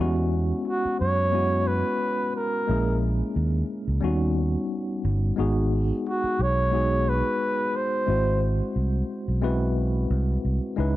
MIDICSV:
0, 0, Header, 1, 5, 480
1, 0, Start_track
1, 0, Tempo, 674916
1, 1905, Time_signature, 4, 2, 24, 8
1, 7799, End_track
2, 0, Start_track
2, 0, Title_t, "Flugelhorn"
2, 0, Program_c, 0, 56
2, 481, Note_on_c, 0, 66, 81
2, 697, Note_off_c, 0, 66, 0
2, 710, Note_on_c, 0, 73, 96
2, 1189, Note_on_c, 0, 71, 83
2, 1199, Note_off_c, 0, 73, 0
2, 1666, Note_off_c, 0, 71, 0
2, 1674, Note_on_c, 0, 70, 72
2, 2121, Note_off_c, 0, 70, 0
2, 4327, Note_on_c, 0, 66, 84
2, 4566, Note_on_c, 0, 73, 96
2, 4576, Note_off_c, 0, 66, 0
2, 5041, Note_on_c, 0, 71, 93
2, 5051, Note_off_c, 0, 73, 0
2, 5520, Note_on_c, 0, 72, 79
2, 5531, Note_off_c, 0, 71, 0
2, 5992, Note_off_c, 0, 72, 0
2, 7799, End_track
3, 0, Start_track
3, 0, Title_t, "Tine electric piano"
3, 0, Program_c, 1, 4
3, 0, Note_on_c, 1, 59, 70
3, 0, Note_on_c, 1, 61, 64
3, 0, Note_on_c, 1, 64, 68
3, 0, Note_on_c, 1, 67, 57
3, 6, Note_on_c, 1, 66, 80
3, 24, Note_on_c, 1, 56, 73
3, 106, Note_off_c, 1, 67, 0
3, 116, Control_c, 1, 64, 127
3, 616, Note_off_c, 1, 59, 0
3, 621, Note_off_c, 1, 61, 0
3, 624, Note_off_c, 1, 64, 0
3, 628, Note_off_c, 1, 66, 0
3, 637, Note_off_c, 1, 56, 0
3, 935, Note_on_c, 1, 56, 67
3, 940, Note_on_c, 1, 59, 60
3, 946, Note_on_c, 1, 61, 58
3, 951, Note_on_c, 1, 64, 59
3, 960, Note_on_c, 1, 66, 74
3, 1573, Note_off_c, 1, 56, 0
3, 1575, Note_off_c, 1, 59, 0
3, 1579, Note_off_c, 1, 61, 0
3, 1581, Note_off_c, 1, 64, 0
3, 1585, Note_off_c, 1, 66, 0
3, 1902, Note_on_c, 1, 56, 67
3, 1910, Note_on_c, 1, 58, 62
3, 1913, Note_on_c, 1, 61, 61
3, 1914, Control_c, 1, 64, 0
3, 1920, Note_on_c, 1, 64, 61
3, 1926, Note_on_c, 1, 68, 67
3, 2026, Control_c, 1, 64, 127
3, 2536, Note_off_c, 1, 56, 0
3, 2541, Note_off_c, 1, 58, 0
3, 2542, Note_off_c, 1, 61, 0
3, 2546, Note_off_c, 1, 64, 0
3, 2548, Note_off_c, 1, 68, 0
3, 2849, Note_on_c, 1, 55, 79
3, 2854, Note_on_c, 1, 59, 68
3, 2864, Note_on_c, 1, 61, 73
3, 2871, Note_on_c, 1, 63, 67
3, 2874, Control_c, 1, 64, 0
3, 2875, Note_on_c, 1, 66, 86
3, 2991, Control_c, 1, 64, 127
3, 3490, Note_off_c, 1, 55, 0
3, 3493, Note_off_c, 1, 59, 0
3, 3497, Note_off_c, 1, 61, 0
3, 3501, Note_off_c, 1, 63, 0
3, 3503, Note_off_c, 1, 66, 0
3, 3813, Note_on_c, 1, 56, 73
3, 3821, Note_on_c, 1, 59, 68
3, 3828, Note_on_c, 1, 63, 67
3, 3832, Control_c, 1, 64, 0
3, 3835, Note_on_c, 1, 66, 73
3, 3839, Note_on_c, 1, 68, 83
3, 3946, Control_c, 1, 64, 127
3, 4452, Note_off_c, 1, 56, 0
3, 4456, Note_off_c, 1, 59, 0
3, 4459, Note_off_c, 1, 63, 0
3, 4463, Note_off_c, 1, 66, 0
3, 4465, Note_off_c, 1, 68, 0
3, 4773, Note_on_c, 1, 56, 68
3, 4779, Note_on_c, 1, 59, 57
3, 4784, Note_on_c, 1, 63, 56
3, 4791, Note_on_c, 1, 66, 61
3, 4799, Note_on_c, 1, 68, 75
3, 5411, Note_off_c, 1, 56, 0
3, 5414, Note_off_c, 1, 59, 0
3, 5417, Note_off_c, 1, 63, 0
3, 5421, Note_off_c, 1, 66, 0
3, 5425, Note_off_c, 1, 68, 0
3, 5735, Note_on_c, 1, 56, 66
3, 5740, Note_on_c, 1, 60, 57
3, 5748, Note_on_c, 1, 64, 61
3, 5754, Control_c, 1, 64, 0
3, 5754, Note_on_c, 1, 66, 58
3, 5760, Note_on_c, 1, 72, 70
3, 5859, Control_c, 1, 64, 127
3, 6372, Note_off_c, 1, 56, 0
3, 6374, Note_off_c, 1, 60, 0
3, 6379, Note_off_c, 1, 64, 0
3, 6382, Note_off_c, 1, 66, 0
3, 6385, Note_off_c, 1, 72, 0
3, 6695, Note_on_c, 1, 56, 72
3, 6699, Note_on_c, 1, 60, 67
3, 6707, Note_on_c, 1, 64, 77
3, 6712, Note_on_c, 1, 66, 71
3, 6716, Note_on_c, 1, 71, 82
3, 7331, Note_off_c, 1, 56, 0
3, 7334, Note_off_c, 1, 60, 0
3, 7338, Note_off_c, 1, 64, 0
3, 7340, Note_off_c, 1, 66, 0
3, 7342, Note_off_c, 1, 71, 0
3, 7653, Note_on_c, 1, 56, 73
3, 7659, Note_on_c, 1, 61, 69
3, 7666, Note_on_c, 1, 63, 71
3, 7671, Control_c, 1, 64, 0
3, 7671, Note_on_c, 1, 64, 70
3, 7681, Note_on_c, 1, 71, 78
3, 7783, Control_c, 1, 64, 127
3, 7799, Note_off_c, 1, 56, 0
3, 7799, Note_off_c, 1, 61, 0
3, 7799, Note_off_c, 1, 63, 0
3, 7799, Note_off_c, 1, 64, 0
3, 7799, Note_off_c, 1, 71, 0
3, 7799, End_track
4, 0, Start_track
4, 0, Title_t, "Fingered electric bass"
4, 0, Program_c, 2, 33
4, 0, Note_on_c, 2, 40, 93
4, 362, Note_off_c, 2, 40, 0
4, 717, Note_on_c, 2, 42, 67
4, 1292, Note_off_c, 2, 42, 0
4, 1915, Note_on_c, 2, 34, 94
4, 2281, Note_off_c, 2, 34, 0
4, 2390, Note_on_c, 2, 39, 90
4, 2572, Note_off_c, 2, 39, 0
4, 2757, Note_on_c, 2, 37, 67
4, 2841, Note_off_c, 2, 37, 0
4, 2865, Note_on_c, 2, 39, 85
4, 3235, Note_off_c, 2, 39, 0
4, 3588, Note_on_c, 2, 31, 96
4, 3771, Note_off_c, 2, 31, 0
4, 3830, Note_on_c, 2, 32, 86
4, 4197, Note_off_c, 2, 32, 0
4, 4546, Note_on_c, 2, 35, 78
4, 5126, Note_off_c, 2, 35, 0
4, 5748, Note_on_c, 2, 32, 86
4, 6116, Note_off_c, 2, 32, 0
4, 6229, Note_on_c, 2, 36, 87
4, 6411, Note_off_c, 2, 36, 0
4, 6600, Note_on_c, 2, 35, 69
4, 7158, Note_off_c, 2, 35, 0
4, 7186, Note_on_c, 2, 36, 86
4, 7369, Note_off_c, 2, 36, 0
4, 7430, Note_on_c, 2, 36, 76
4, 7527, Note_off_c, 2, 36, 0
4, 7668, Note_on_c, 2, 37, 90
4, 7799, Note_off_c, 2, 37, 0
4, 7799, End_track
5, 0, Start_track
5, 0, Title_t, "Muted fingered electric bass strokes"
5, 607, Note_on_c, 9, 29, 38
5, 678, Note_off_c, 9, 29, 0
5, 4436, Note_on_c, 9, 29, 40
5, 4508, Note_off_c, 9, 29, 0
5, 7799, End_track
0, 0, End_of_file